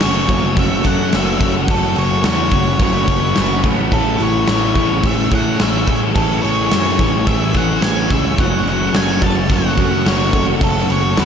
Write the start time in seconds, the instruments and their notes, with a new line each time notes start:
Already playing: clean electric guitar F#2, twelve-string acoustic guitar F#3 C#4, distorted electric guitar A3, lead electric guitar C#5, ambient pad F#5 C#6
0.00 distorted electric guitar F#2 C#3, clean electric guitar F#3 A3, snare, crash
0.04 picked electric bass F#1, clean electric guitar C#4 F#4
0.29 picked electric bass F#1, clean electric guitar F#3 A3 C#4 F#4, kick, crash
0.57 picked electric bass F#1, clean electric guitar F#2 C#3 F#3 A3 C#4 F#4, lead electric guitar E5, kick, crash
0.85 picked electric bass F#2, clean electric guitar F#3 A3 C#4 F#4, lead electric guitar F#5, kick, crash
1.11 picked electric bass F#1, distorted electric guitar F#2 C#3, clean electric guitar F#3 A3 C#4 F#4, snare, crash
1.16 lead electric guitar E5
1.40 picked electric bass F#1, clean electric guitar F#3 A3 C#4 F#4, kick, crash
1.67 picked electric bass F#1, clean electric guitar F#2 C#3 F#3 A3 C#4 F#4, ambient pad B5, kick, crash
1.71 lead electric guitar A4
1.95 picked electric bass F#1, clean electric guitar F#3 A3 C#4 F#4, lead electric guitar C#5, crash
2.22 picked electric bass E2, distorted electric guitar F#2 C#3, clean electric guitar F#3 A3 C#4 F#4, lead electric guitar C#5, snare, crash
2.51 picked electric bass F#1, clean electric guitar A3 C#4 F#4, kick, crash
2.55 clean electric guitar F#3
2.79 picked electric bass F#1, clean electric guitar F#2 C#3 F#3 A3 C#4 F#4, lead electric guitar C#5, kick, crash
3.08 picked electric bass F#1, clean electric guitar F#3 A3 C#4 F#4, kick, crash
3.35 picked electric bass F#1, distorted electric guitar F#2 C#3, clean electric guitar F#3 A3 C#4 F#4, snare, crash
3.39 distorted electric guitar F#3
3.64 picked electric bass A1, clean electric guitar F#3 A3 C#4 F#4, kick, crash
3.91 picked electric bass A1, clean electric guitar A2 E3 A3 C#4 G#4, lead electric guitar A4, ambient pad G#5 C#6, kick, crash
4.18 picked electric bass A1, twelve-string acoustic guitar E3, clean electric guitar A3 C#4 G#4, crash
4.22 lead electric guitar C#5
4.45 distorted electric guitar A2, clean electric guitar E3 A3 C#4, snare, crash
4.49 picked electric bass A1, clean electric guitar G#4
4.74 picked electric bass A1, clean electric guitar A3 C#4 G#4, kick, crash
5.03 picked electric bass A1, clean electric guitar A2 E3 A3 C#4 G#4, lead electric guitar E5, kick, crash
5.30 picked electric bass A2, clean electric guitar A3 C#4 G#4, kick, crash
5.35 lead electric guitar F#5
5.58 picked electric bass A1, distorted electric guitar A2, clean electric guitar E3 A3 C#4 G#4, snare, crash
5.62 lead electric guitar E5
5.88 picked electric bass A1, clean electric guitar A3 C#4 G#4, kick, crash
6.15 picked electric bass A1, clean electric guitar A2 E3 A3 C#4 G#4, lead electric guitar A4, kick, crash
6.42 picked electric bass A1, twelve-string acoustic guitar E3, clean electric guitar C#4 G#4, lead electric guitar C#5, crash
6.47 clean electric guitar A3
6.69 picked electric bass F#2, distorted electric guitar A2, clean electric guitar E3 A3, snare, crash
6.74 clean electric guitar C#4 G#4
6.99 picked electric bass A1, clean electric guitar C#4 G#4, kick, crash
7.03 clean electric guitar A3
7.27 picked electric bass A1, clean electric guitar A2 E3 A3 C#4 G#4, lead electric guitar E5, kick, crash
7.54 picked electric bass A1, clean electric guitar C#4 G#4, lead electric guitar F#5, kick, crash
7.58 clean electric guitar A3
7.82 picked electric bass A1, distorted electric guitar A2, clean electric guitar E3 A3 C#4, lead electric guitar G#5, snare, crash
7.87 clean electric guitar G#4
8.10 picked electric bass C#2, twelve-string acoustic guitar G#3, clean electric guitar A3 C#4 G#4, lead electric guitar E5, kick, crash
8.38 picked electric bass F#1, clean electric guitar F#2 C#3 F#3 A3 C#4 F#4, ambient pad A4 F#5, lead electric guitar F#5, kick, crash
8.65 picked electric bass F#1, clean electric guitar F#3 A3 C#4 F#4, crash
8.69 lead electric guitar F#5
8.93 picked electric bass F#1, distorted electric guitar F#2 C#3, clean electric guitar F#3 A3 C#4 F#4, lead electric guitar G#5, snare, crash
8.97 distorted electric guitar F#3
9.21 picked electric bass F#1, clean electric guitar F#3 A3 C#4 F#4, lead electric guitar A5, kick, crash
9.48 picked electric bass F#1, clean electric guitar F#2 C#3 F#3 A3 C#4 F#4, kick, crash
9.53 distorted electric guitar F#3, lead electric guitar F#5
9.76 picked electric bass F#2, clean electric guitar F#3 A3 C#4 F#4, kick, crash
10.05 picked electric bass F#1, distorted electric guitar F#2 C#3, clean electric guitar F#3 A3 C#4 F#4, lead electric guitar C#5, snare, crash
10.33 picked electric bass F#1, clean electric guitar F#3 A3 C#4 F#4, kick, crash
10.61 picked electric bass F#1, clean electric guitar F#2 C#3 F#3 A3 C#4 F#4, lead electric guitar A4, kick, crash
10.88 picked electric bass F#1, twelve-string acoustic guitar F#3, clean electric guitar C#4 F#4, lead electric guitar C#5, crash
10.92 clean electric guitar F#3 A3
11.17 picked electric bass E2, distorted electric guitar F#2 C#3, clean electric guitar F#3 A3 C#4 F#4, lead electric guitar B4, snare, crash